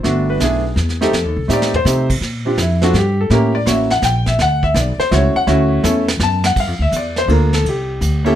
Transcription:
0.03 0.39 G1 medium
0.03 0.39 A3 medium
0.03 0.39 B3 medium
0.03 0.39 D4 medium
0.03 0.39 F#4 medium
0.03 brush sweep soft
0.03 snare soft
0.30 0.41 B4 medium
0.40 0.75 B1 medium
0.40 0.62 A3 medium
0.40 0.62 B3 medium
0.40 0.62 D4 medium
0.40 0.63 E4 medium
0.40 snare medium
0.40 hi-hat pedal soft
0.44 0.98 G#4 medium
0.76 1.11 E2 medium
0.76 snare soft
0.89 snare soft
1.01 1.12 A3 medium
1.01 1.12 C4 medium
1.01 1.12 D#4 medium
1.01 1.12 G4 medium
1.01 1.47 A4 medium
1.01 snare soft
1.13 1.25 F2 medium
1.13 brush sweep soft
1.13 snare soft
1.25 1.36 D#2 medium
1.37 1.48 C2 medium
1.48 1.84 A2 medium
1.48 1.70 A3 medium
1.48 1.70 C4 medium
1.48 1.71 D#4 medium
1.48 1.71 G4 medium
1.48 snare soft
1.48 hi-hat pedal soft
1.53 1.74 D5 medium
1.62 snare medium
1.74 2.08 C5 medium
1.74 floor tom medium
1.85 2.20 C3 medium
1.85 2.07 A3 medium
1.85 2.07 C4 medium
1.85 2.07 D#4 soft
1.85 2.07 G4 medium
1.85 snare medium
1.85 hi-hat pedal medium
2.10 kick medium
2.10 crash medium
2.21 2.56 A#2 medium
2.21 brush sweep soft
2.21 snare soft
2.45 2.56 C4 medium
2.45 2.57 D4 soft
2.45 2.57 F4 medium
2.45 2.57 G4 medium
2.57 2.93 F2 medium
2.57 2.82 E4 medium
2.57 snare medium
2.57 hi-hat pedal medium
2.81 2.92 C4 medium
2.81 2.93 D4 medium
2.81 2.93 F4 medium
2.81 2.94 F#4 medium
2.81 2.93 A4 medium
2.81 snare soft
2.93 3.29 G2 medium
2.93 snare soft
2.98 3.19 G4 medium
3.21 3.31 A4 medium
3.30 3.65 A2 medium
3.30 3.52 A#3 medium
3.30 3.52 C#4 medium
3.30 3.52 E4 medium
3.30 3.52 G4 medium
3.30 3.55 A#4 medium
3.30 brush sweep soft
3.30 snare soft
3.55 3.66 D5 medium
3.66 4.01 A1 loud
3.66 3.87 A#3 medium
3.66 3.88 C#4 medium
3.66 3.88 E4 medium
3.66 3.88 F#4 medium
3.66 3.91 E5 medium
3.66 snare medium
3.66 hi-hat pedal medium
3.90 4.02 F#5 loud
3.90 snare soft
4.02 4.37 A#1 medium
4.02 4.27 G5 medium
4.02 snare medium
4.02 hi-hat pedal medium
4.26 4.39 E5 medium
4.26 kick soft
4.26 snare soft
4.39 4.74 D2 medium
4.39 4.63 F#5 loud
4.39 brush sweep soft
4.39 snare soft
4.63 4.75 E5 medium
4.63 kick medium
4.74 4.97 B1 loud
4.74 5.00 D5 medium
4.74 snare medium
4.74 hi-hat pedal medium
4.98 5.11 C5 medium
4.98 muted upright bass stroke soft
4.98 snare soft
5.11 5.33 C#2 medium
5.11 5.32 A3 medium
5.11 5.33 C#4 medium
5.11 5.33 E4 medium
5.11 5.33 F#4 medium
5.11 5.36 C#5 medium
5.11 snare soft
5.35 5.43 F#5 loud
5.35 muted upright bass stroke soft
5.47 5.82 D2 medium
5.47 5.82 A3 medium
5.47 5.82 C#4 medium
5.47 5.82 E4 medium
5.47 5.83 F#4 medium
5.47 brush sweep soft
5.47 snare soft
5.83 6.19 E2 medium
5.83 6.05 A3 medium
5.83 6.05 C#4 medium
5.83 6.05 E4 medium
5.83 6.06 A4 medium
5.83 snare soft
5.83 hi-hat pedal medium
6.08 snare medium
6.20 6.55 F#2 loud
6.20 6.45 A5 medium
6.20 snare medium
6.44 6.57 F#5 loud
6.44 snare medium
6.56 6.67 G2 medium
6.56 6.81 F5 medium
6.56 kick medium
6.56 crash medium
6.67 6.79 F2 medium
6.79 6.91 D2 medium
6.79 6.93 E5 medium
6.92 7.27 E2 medium
6.92 hi-hat pedal medium
6.92 ride medium
6.96 7.18 D5 medium
7.16 7.29 C5 medium
7.16 snare medium
7.28 7.63 D2 medium
7.28 7.50 A#3 medium
7.28 7.50 D4 medium
7.28 7.50 F4 medium
7.28 7.50 A4 medium
7.28 ride medium
7.32 7.54 A#4 medium
7.53 7.65 A4 medium
7.53 snare soft
7.64 8.00 C2 medium
7.64 ride medium
7.69 8.23 G4 medium
8.01 8.35 D2 medium
8.01 hi-hat pedal medium
8.01 ride medium
8.25 8.35 A#3 medium
8.25 8.35 C#4 medium
8.25 8.35 E4 medium
8.25 8.35 G4 medium
8.25 8.35 A4 medium
8.25 ride soft

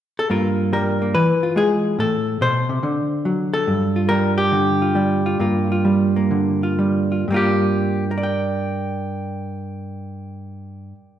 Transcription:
0.19 0.31 A4 medium
0.30 1.14 G2 medium
0.30 1.00 A#3 soft
0.30 1.13 F4 soft
0.30 0.72 A#4 soft
0.73 1.13 G3 medium
0.73 1.14 A#4 medium
1.02 1.15 A#3 soft
1.15 1.97 E3 medium
1.15 1.56 B4 loud
1.43 1.97 F4 soft
1.56 1.96 G#3 medium
1.56 1.99 G#4 medium
1.99 2.40 A2 medium
1.99 2.41 A4 medium
2.41 2.69 B2 medium
2.41 3.53 C5 loud
2.69 2.83 C3 medium
2.83 3.65 D3 medium
3.25 3.65 F#3 medium
3.54 4.08 A4 medium
3.67 5.39 G2 medium
3.96 4.82 F4 soft
4.09 4.95 G3 medium
4.09 4.37 A#4 loud
4.38 7.27 G4 medium
4.52 5.37 D3 medium
4.82 5.26 F4 soft
4.95 5.44 G3 medium
5.26 5.41 F4 soft
5.39 7.27 G2 medium
5.39 6.15 A#3 soft
5.39 5.70 F4 soft
5.72 6.62 F4 soft
5.85 6.77 G3 medium
6.16 7.31 A#3 soft
6.31 7.25 D3 medium
6.63 7.11 F4 soft
6.79 7.25 G3 medium
7.12 7.25 F4 soft
7.28 10.92 G2 medium
7.28 10.95 G3 medium
7.32 8.11 A#3 medium
7.32 8.17 F4 medium
7.36 8.04 G4 medium
8.11 11.19 A#4 medium
8.18 11.19 D5 medium
8.23 11.19 G5 medium

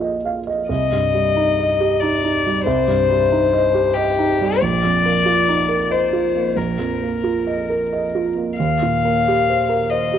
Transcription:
0.00 0.66 A#1 soft
0.00 0.72 A#3 soft
0.00 0.71 F4 soft
0.00 0.47 D#5 soft
0.25 0.47 F5 soft
0.47 0.69 D#5 soft
0.68 2.62 C2 soft
0.68 2.01 D#5 medium
0.92 1.27 G2 soft
1.14 1.49 G3 soft
1.36 1.71 D#4 soft
1.58 1.93 D#5 soft
1.80 2.14 G4 soft
2.00 2.23 D#4 soft
2.00 2.64 D5 medium
2.24 2.58 D#4 soft
2.46 2.80 G3 soft
2.64 4.58 C2 medium
2.64 3.95 C5 medium
2.88 3.22 G2 soft
3.10 3.43 G3 soft
3.32 3.65 D#4 soft
3.53 3.87 D#5 soft
3.74 4.08 G4 soft
3.93 4.62 G4 medium
3.93 4.31 D#5 soft
4.19 4.54 D#4 soft
4.41 4.62 G3 soft
4.61 6.53 A#1 medium
4.61 5.93 D5 loud
4.84 5.18 F2 soft
5.05 5.39 A#3 soft
5.26 5.60 F4 soft
5.48 5.83 D#4 soft
5.69 6.04 A#4 soft
5.91 6.58 C5 medium
5.91 6.26 D#5 soft
6.13 6.48 F4 soft
6.35 6.70 A#3 soft
6.56 8.53 A#1 soft
6.56 8.24 A#4 medium
6.79 7.14 F2 soft
7.02 7.37 A#3 soft
7.24 7.59 F4 soft
7.47 7.82 D#5 soft
7.70 8.04 A#4 soft
7.93 8.27 D#5 soft
8.15 8.49 F4 soft
8.36 8.58 A#3 soft
8.57 10.19 D#2 soft
8.57 9.92 F5 medium
8.82 9.16 A#2 soft
9.05 9.39 A#3 soft
9.28 9.61 G4 soft
9.50 9.83 C5 soft
9.69 10.04 A#4 soft
9.90 10.19 C5 soft
9.90 10.19 D#5 medium
10.13 10.19 G4 soft

